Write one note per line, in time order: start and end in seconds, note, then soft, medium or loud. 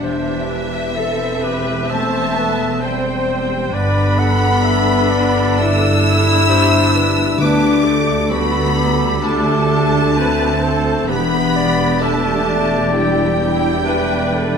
0.00 3.70 E1 medium
0.00 3.70 E2 medium
0.00 1.90 E3 medium
0.00 1.87 E3 medium
0.00 2.09 G3 soft
0.00 0.92 D4 medium
0.00 3.48 G4 soft
0.00 0.51 C5 medium
0.00 1.87 E5 medium
0.00 1.91 E5 medium
0.04 0.94 G4 medium
0.26 1.66 C4 soft
0.49 4.40 E4 medium
0.49 0.97 B4 medium
0.72 3.78 E5 soft
0.96 1.89 C4 medium
0.96 1.45 A4 medium
0.96 1.43 A4 medium
1.44 1.93 G4 medium
1.44 1.91 B4 medium
1.67 3.50 C4 medium
1.90 3.78 E3 medium
1.90 2.83 A3 medium
1.90 2.36 C4 medium
1.90 2.39 C5 medium
1.90 2.83 E5 medium
1.90 2.83 A5 medium
1.90 2.81 A5 loud
2.14 3.96 G3 soft
2.37 2.83 B3 medium
2.37 2.82 B4 medium
2.61 3.05 C5 medium
2.82 3.72 G3 medium
2.82 3.74 C4 medium
2.82 3.76 C5 medium
2.82 3.72 C5 medium
2.82 3.74 G5 medium
2.82 3.75 G5 medium
3.06 3.78 C5 medium
3.52 3.78 C4 soft
3.73 7.36 G1 medium
3.73 7.35 G2 medium
3.73 7.44 G2 medium
3.73 5.59 B3 medium
3.73 6.46 D4 medium
3.73 4.19 B4 medium
3.73 4.20 D5 medium
3.73 5.55 B5 medium
3.73 5.59 B5 loud
3.97 5.34 G3 medium
4.19 6.46 A4 medium
4.19 4.66 F#5 medium
4.41 5.10 D4 medium
4.64 6.48 D5 medium
4.64 5.12 E5 medium
5.11 6.24 D4 medium
5.11 6.22 D5 medium
5.35 5.81 G3 medium
5.58 7.39 D3 soft
5.58 7.40 E4 loud
5.58 7.39 E6 loud
5.58 7.40 E6 loud
5.82 7.16 G3 medium
6.26 6.94 D4 medium
6.49 7.40 D4 medium
6.49 7.38 G4 medium
6.49 6.97 C5 medium
6.49 8.07 D5 medium
6.95 7.61 D4 medium
6.95 7.40 B4 medium
7.17 9.22 G3 medium
7.38 11.05 D2 medium
7.38 8.72 D3 medium
7.38 11.13 D3 medium
7.38 7.84 B3 medium
7.38 8.31 D4 medium
7.38 8.29 G4 medium
7.38 7.85 B4 medium
7.38 8.31 D6 loud
7.38 8.29 D6 medium
7.62 9.00 D4 medium
7.84 8.30 A3 medium
7.84 8.32 A4 medium
7.84 11.75 A4 medium
8.08 8.54 D5 medium
8.30 9.23 G3 medium
8.30 9.08 B3 medium
8.30 8.79 F#4 medium
8.30 9.21 A4 medium
8.30 10.16 A5 medium
8.30 9.22 B5 loud
8.30 9.25 B5 medium
8.55 9.93 D5 medium
8.77 9.70 G4 medium
8.77 10.19 G4 medium
9.01 9.47 D4 medium
9.23 12.93 G3 medium
9.23 11.06 A3 medium
9.23 9.69 D4 medium
9.23 10.16 A4 medium
9.23 11.09 A5 loud
9.23 11.09 A5 medium
9.48 10.85 D4 medium
9.70 10.16 D4 medium
9.70 10.63 G4 medium
9.94 10.39 D5 medium
10.17 11.09 C4 medium
10.17 10.65 A4 medium
10.17 10.62 B4 medium
10.17 11.13 A5 medium
10.41 11.78 D5 medium
10.63 11.55 G4 medium
10.63 11.08 A4 medium
10.63 11.10 C5 medium
10.86 11.31 D4 medium
11.06 14.58 E1 medium
11.06 14.58 E2 medium
11.06 14.58 E3 medium
11.06 12.00 B3 medium
11.06 12.01 B3 medium
11.06 13.87 G4 medium
11.06 11.55 B4 medium
11.06 11.99 B5 loud
11.06 12.00 B5 medium
11.33 12.70 D4 medium
11.56 12.46 G4 medium
11.56 12.04 D5 medium
11.79 12.24 D5 medium
12.00 12.93 A3 medium
12.00 12.93 D4 medium
12.00 13.85 E5 medium
12.00 12.48 E5 medium
12.00 12.93 A5 medium
12.00 12.94 A5 medium
12.25 13.62 D5 medium
12.47 13.38 G4 medium
12.47 13.57 D5 medium
12.71 13.15 D4 medium
12.93 14.58 G3 medium
12.93 14.58 G3 soft
12.93 13.39 E4 medium
12.93 14.58 G5 medium
12.93 14.58 G5 loud
13.16 14.56 D4 medium
13.39 13.86 E4 medium
13.39 14.32 G4 medium
13.63 14.09 D5 medium
13.86 14.58 D4 medium
13.86 14.58 B4 medium
13.86 14.35 B4 medium
13.86 14.58 E5 medium
14.10 14.58 D5 medium
14.34 14.58 G4 soft
14.34 14.58 A4 medium